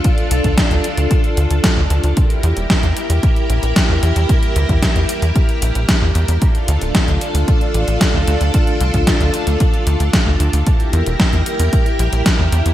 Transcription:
<<
  \new Staff \with { instrumentName = "String machine" } { \time 4/4 \key d \minor \tempo 4 = 113 <d' f' a'>1 | <e' g' bes'>1~ | <e' g' bes'>1 | <d' f' a'>1~ |
<d' f' a'>1 | <e' g' bes'>1 | }
  \new Staff \with { instrumentName = "Analog synth bass" } { \clef bass \time 4/4 \key d \minor r8 c,16 d,16 r16 d,16 r16 d,16 r8 d,16 d,16 r16 d,16 d,16 d,16 | r8 e,16 e,,16 r16 e,16 r16 e,16 r8 bes,,16 bes,,16 r16 e,16 e,16 e,16 | r8 d,16 e,16 r16 e,16 r16 e,16 r8 bes,,16 bes,,16 r16 e,16 e,16 e,16 | r8 d,16 d,,16 r16 d,16 r16 d,16 r8 a,,16 a,,16 r16 d,16 d,16 d,16 |
r8 c,16 d,16 r16 d,16 r16 d,16 r8 d,16 d,16 r16 d,16 d,16 d,16 | r8 e,16 e,,16 r16 e,16 r16 e,16 r8 bes,,16 bes,,16 r16 e,16 e,16 e,16 | }
  \new DrumStaff \with { instrumentName = "Drums" } \drummode { \time 4/4 <hh bd>16 hh16 hh16 <hh bd>16 <hh bd sn>16 hh16 hh16 hh16 <hh bd>16 hh16 hh16 hh16 <hh bd sn>8 hh16 hh16 | <hh bd>16 hh16 hh16 hh16 <hh bd sn>16 hh16 hh16 hh16 <hh bd>16 hh16 hh16 hh16 <hh bd sn>8 hh16 hh16 | <hh bd>16 hh16 hh16 <hh bd>16 <hh bd sn>16 hh16 hh16 hh16 <hh bd>16 hh16 hh16 hh16 <hh bd sn>8 hh16 hh16 | <hh bd>16 hh16 hh16 hh16 <hh bd sn>16 hh16 hh16 hh16 <hh bd>16 hh16 hh16 hh16 <hh bd sn>8 hh16 hh16 |
<hh bd>16 hh16 hh16 <hh bd>16 <hh bd sn>16 hh16 hh16 hh16 <hh bd>16 hh16 hh16 hh16 <hh bd sn>8 hh16 hh16 | <hh bd>16 hh16 hh16 hh16 <hh bd sn>16 hh16 hh16 hh16 <hh bd>16 hh16 hh16 hh16 <hh bd sn>8 hh16 hh16 | }
>>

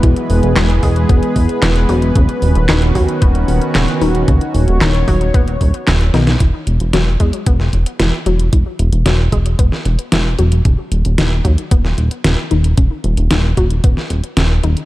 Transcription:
<<
  \new Staff \with { instrumentName = "Analog synth pad" } { \time 4/4 \key e \major \tempo 4 = 113 << { b'1~ | b'1 | cis''1 | r1 |
r1 | r1 | r1 | } \\ { <e gis b gis'>1 | <dis cis' fis'>1~ | <dis cis' fis'>1 | r1 |
r1 | r1 | r1 | } >> }
  \new Staff \with { instrumentName = "Synth arpeggio sound" } { \clef bass \time 4/4 \key e \major e8 r8 fis8 gis8 b8 r8 e8 fis8 | cis8 r8 dis8 fis8 b8 r8 cis8 dis8 | cis8 r8 dis8 fis8 b8 r8 cis8 dis8 | e8 r8 fis8 gis8 b8 r8 e8 fis8 |
e8 r8 fis8 gis8 b8 r8 e8 fis8 | cis8 r8 dis8 fis8 b8 r8 cis8 dis8 | cis8 r8 dis8 fis8 b8 r8 cis8 dis8 | }
  \new Staff \with { instrumentName = "Analog synth bass" } { \clef bass \time 4/4 \key e \major e,,16 r16 e,,16 e,,16 e,,8 e,,8 e,,16 r16 e,,16 r16 e,,8 e,,8 | dis,,16 r16 dis,,16 dis,,16 dis,,8 dis,16 r16 dis,,8 dis,,16 r16 dis,,16 r16 dis,,8 | dis,,16 r16 dis,,16 dis,,16 dis,,8 dis,,8 dis,,8 dis,,16 r16 dis,,8 b,,8 | e,,16 r16 e,,16 e,,16 e,,8 e,16 r16 e,,8 e,,16 r16 e,,16 r16 e,,8 |
e,,16 r16 e,,16 e,,16 e,,8 e,,8 e,,16 r16 e,,16 r16 e,,8 e,,8 | dis,,16 r16 dis,,16 dis,,16 dis,,8 dis,16 r16 dis,,8 dis,,16 r16 dis,,16 r16 dis,,8 | dis,,16 r16 dis,,16 dis,,16 dis,,8 dis,,8 dis,,16 r16 dis,,16 r16 dis,,8 dis,,16 r16 | }
  \new DrumStaff \with { instrumentName = "Drums" } \drummode { \time 4/4 <hh bd>16 hh16 hho16 hh16 <hc hh sn>16 hh16 <hho bd>16 hh16 <hh bd>16 hh16 <hho bd>16 hh16 <hc hh sn>16 hh16 hho16 hh16 | <hh bd>16 hh16 hho16 hh16 <hc hh sn>16 hh16 <hho bd>16 hh16 <hh bd>16 hh16 hho16 hh16 <hc hh sn>16 hh16 hho16 hh16 | <hh bd>16 hh16 hho16 hh16 <hc hh sn>16 hh16 <hho bd>16 hh16 <hh bd>16 hh16 <hho bd>16 hh16 <hc hh sn>16 hh16 <hho sn>16 <hh sn>16 | <hh bd>8 hh16 hh16 <hh sn>8 <hh bd>16 hh16 <hh bd>16 sn16 hh16 hh16 <hh sn>8 hh16 hh16 |
<hh bd>8 hh16 hh16 <hh sn>8 <hh bd>16 hh16 <hh bd>16 sn16 hh16 hh16 <hh sn>8 hh16 hh16 | <hh bd>8 hh16 hh16 <hh sn>8 <hh bd>16 hh16 <hh bd>16 sn16 hh16 hh16 <hh sn>8 hh16 hh16 | <hh bd>8 hh16 hh16 <hh sn>8 <hh bd>16 hh16 <hh bd>16 sn16 hh16 hh16 <hh sn>8 hh16 hh16 | }
>>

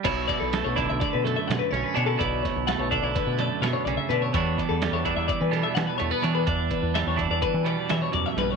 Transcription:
<<
  \new Staff \with { instrumentName = "Clean electric guitar" } { \time 9/8 \key b \minor \tempo 4. = 84 cis''8 d''16 a'8 cis''16 d''16 e''16 d''16 b'16 a'16 e''16 fis''16 b'16 cis''16 b'16 cis''16 a'16 | d''8 cis''8 fis''16 cis''16 d''16 d''16 b'8 d''8 e''16 cis''16 d''16 e''16 b'16 cis''16 | cis''8 d''16 a'8 cis''16 d''16 e''16 d''16 b'16 a'16 e''16 fis''16 b'16 cis''16 b'16 cis''16 b'16 | d''8 b'8 e''16 cis''16 d''16 d''16 b'8 d''8 e''16 cis''16 d''16 e''16 b'16 cis''16 | }
  \new Staff \with { instrumentName = "Clean electric guitar" } { \clef bass \time 9/8 \key b \minor << { <g e'>4 a8 e'4 a4 cis'8 d'16 e'16 | e'4 a8 d'16 e'8. a2 | <e g b d'>4 g8 d'4 g4 a16 b16 d'8 | d'4 g8 d'4 g2 | } \\ { b,4. d4 fis,4. b,8 | b,4. d4 fis,8 b,8 cis8 d8 | e,4. e4 b,4. e,8 | e,4. e4 b,8 e,8 fis,8 g,8 | } >> }
  \new Staff \with { instrumentName = "Fingered electric bass" } { \clef bass \time 9/8 \key b \minor b,,8 r16 b,,8 b,,8 b,,16 r16 b,8 r16 b,16 r16 b,,16 r16 b,8 | b,,8 r16 b,,8 b,,8 b,,16 r16 b,8 r16 b,16 r16 b,,16 r16 b,8 | e,8 r16 e,8 e,8 e,16 r16 e8 r16 e16 r16 e,16 r16 e8 | e,8 r16 e,8 e,8 e,16 r16 e8 r16 e16 r16 e,16 r16 bes,,8 | }
  \new DrumStaff \with { instrumentName = "Drums" } \drummode { \time 9/8 <cymc hh bd>8 <hh bd sn>8 <hh sn>8 <hh bd sn>8 <hh bd sn>8 hh8 <hh sn>8 <hh sn>8 hh8 | <hh bd>8 <hh bd sn>8 <hh sn>8 <hh bd>8 <hh bd sn>8 hh8 <hh sn>8 hh8 hh8 | <hh bd>8 <hh bd>8 <hh sn>8 <hh bd>8 <hh bd>8 <hh sn>8 <hh sn>8 hh8 hh8 | <hh bd>8 <hh bd>8 <hh sn>8 <hh bd>8 <hh bd>8 hh8 <hh sn>8 hh8 <hh sn>8 | }
>>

